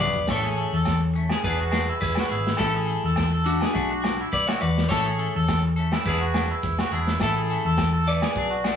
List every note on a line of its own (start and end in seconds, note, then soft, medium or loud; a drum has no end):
0.00 0.12 C#2 medium
0.00 0.20 B3 soft
0.00 0.19 E4 soft
0.00 0.18 G#4 medium
0.00 0.26 B4 medium
0.00 0.26 D5 medium
0.13 0.26 B1 medium
0.13 floor tom medium
0.27 0.63 A1 medium
0.27 0.47 E3 medium
0.27 0.48 A3 medium
0.27 0.48 C#4 medium
0.27 0.43 A4 medium
0.27 1.41 C#5 medium
0.27 kick medium
0.27 snare medium
0.27 low agogo medium
0.27 maracas medium
0.31 0.48 A4 medium
0.31 1.42 A4 medium
0.43 0.71 G#4 medium
0.43 snare soft
0.57 0.77 A3 soft
0.57 0.76 C#4 soft
0.57 0.76 A4 soft
0.57 maracas medium
0.72 1.28 E2 medium
0.72 1.01 A4 medium
0.85 kick medium
0.85 snare medium
0.85 low agogo medium
0.85 maracas medium
1.14 1.34 A3 soft
1.14 1.33 C#4 soft
1.14 muted clean electric guitar stroke soft
1.14 maracas medium
1.29 1.59 G#4 medium
1.29 snare medium
1.29 low agogo medium
1.44 1.89 E1 medium
1.44 1.62 E3 medium
1.44 1.62 B3 medium
1.44 1.63 D4 medium
1.44 1.63 G#4 medium
1.44 1.99 G#4 medium
1.44 2.00 B4 medium
1.44 kick medium
1.44 maracas medium
1.61 1.88 F#4 medium
1.71 1.92 B3 soft
1.71 1.91 D4 soft
1.71 1.90 G#4 soft
1.71 snare medium
1.71 low agogo medium
1.71 maracas medium
1.89 2.16 E4 medium
2.01 2.14 E1 medium
2.01 2.56 G#4 medium
2.01 2.55 B4 medium
2.01 kick medium
2.01 maracas medium
2.15 2.31 F#4 medium
2.15 snare medium
2.15 low agogo medium
2.29 2.53 G#1 medium
2.29 2.49 B3 soft
2.29 2.58 E4 medium
2.29 2.48 G#4 soft
2.29 maracas medium
2.47 snare medium
2.57 2.94 A1 medium
2.57 2.77 E3 medium
2.57 2.77 A3 medium
2.57 2.78 C#4 medium
2.57 3.42 E4 medium
2.57 3.48 A4 loud
2.57 2.78 A4 medium
2.57 kick medium
2.57 snare medium
2.57 low agogo medium
2.57 maracas medium
2.61 2.75 A4 medium
2.76 3.03 G#4 medium
2.87 3.07 A3 soft
2.87 3.06 A4 soft
2.87 maracas medium
3.04 3.59 E2 medium
3.04 3.32 A4 medium
3.16 kick medium
3.16 snare medium
3.16 low agogo medium
3.16 maracas medium
3.34 3.61 A4 medium
3.45 3.65 A3 soft
3.45 3.64 C#4 soft
3.45 4.29 D4 medium
3.45 4.35 F#4 medium
3.45 3.64 A4 soft
3.45 maracas medium
3.61 3.90 G#4 medium
3.61 snare medium
3.61 low agogo medium
3.73 4.21 B1 medium
3.73 3.92 A3 medium
3.73 3.93 D4 medium
3.73 3.93 F#4 medium
3.73 kick medium
3.73 maracas medium
3.91 4.18 F#4 medium
4.02 4.23 D4 soft
4.02 4.21 F#4 soft
4.02 snare medium
4.02 low agogo medium
4.02 maracas medium
4.21 4.47 E4 medium
4.33 4.45 B1 medium
4.33 4.47 B4 medium
4.33 4.47 D5 medium
4.33 kick medium
4.33 maracas medium
4.47 4.61 F#4 medium
4.47 4.60 C#5 medium
4.47 4.61 E5 medium
4.47 snare medium
4.47 low agogo medium
4.61 4.84 E2 medium
4.61 4.79 F#4 medium
4.61 4.88 B4 medium
4.61 4.88 D5 medium
4.61 muted clean electric guitar stroke medium
4.61 maracas medium
4.78 snare medium
4.89 5.25 A1 medium
4.89 5.08 E3 medium
4.89 5.08 A3 medium
4.89 5.09 C#4 medium
4.89 6.01 A4 medium
4.89 5.05 A4 medium
4.89 5.09 A4 medium
4.89 6.01 C#5 loud
4.89 kick medium
4.89 snare medium
4.89 low agogo medium
4.89 maracas medium
5.06 5.33 G#4 medium
5.18 5.38 A3 soft
5.18 5.37 C#4 soft
5.18 5.37 A4 soft
5.18 maracas medium
5.35 5.91 E2 medium
5.35 5.63 A4 medium
5.48 kick medium
5.48 snare medium
5.48 low agogo medium
5.48 maracas medium
5.65 muted clean electric guitar stroke medium
5.76 5.96 A3 soft
5.76 5.96 C#4 soft
5.76 5.95 A4 soft
5.76 maracas medium
5.92 6.20 E4 medium
5.92 snare medium
5.92 low agogo medium
6.05 6.51 E1 medium
6.05 6.24 E3 medium
6.05 6.25 B3 medium
6.05 6.25 D4 medium
6.05 7.18 G#4 medium
6.05 6.25 G#4 medium
6.05 7.22 B4 medium
6.05 kick medium
6.05 maracas medium
6.21 6.49 F#4 medium
6.34 6.54 B3 soft
6.34 6.53 D4 soft
6.34 snare medium
6.34 low agogo medium
6.34 maracas medium
6.51 6.78 E4 medium
6.62 6.75 E1 medium
6.62 kick medium
6.62 snare soft
6.62 maracas medium
6.78 6.92 F#4 medium
6.78 snare medium
6.78 low agogo medium
6.91 7.14 E1 medium
6.91 7.11 B3 soft
6.91 7.11 D4 soft
6.91 7.20 E4 medium
6.91 7.10 G#4 medium
6.91 maracas medium
7.07 snare medium
7.20 7.55 A1 medium
7.20 7.39 E3 medium
7.20 7.39 A3 medium
7.20 8.05 E4 medium
7.20 7.36 A4 medium
7.20 7.40 A4 medium
7.20 8.08 A4 medium
7.20 muted clean electric guitar stroke medium
7.20 kick medium
7.20 snare medium
7.20 low agogo medium
7.20 maracas medium
7.37 7.64 G#4 medium
7.50 7.69 A3 soft
7.50 7.69 C#4 soft
7.50 7.68 A4 soft
7.50 maracas medium
7.65 8.20 E2 medium
7.65 7.92 A4 medium
7.78 kick medium
7.78 snare medium
7.78 low agogo medium
7.78 maracas medium
7.93 8.21 A4 medium
8.08 8.27 A3 soft
8.08 8.26 C#4 soft
8.08 8.26 A4 soft
8.08 8.76 B4 medium
8.08 8.76 D5 medium
8.08 maracas medium
8.22 8.50 G#4 medium
8.22 snare medium
8.22 low agogo medium
8.35 8.76 B1 medium
8.35 8.54 F#3 medium
8.35 8.55 D4 medium
8.35 muted clean electric guitar stroke medium
8.35 kick medium
8.35 maracas medium
8.50 8.76 F#4 medium
8.64 8.76 A3 soft
8.64 8.76 D4 soft
8.64 8.76 F#4 soft
8.64 snare medium
8.64 low agogo medium
8.64 maracas medium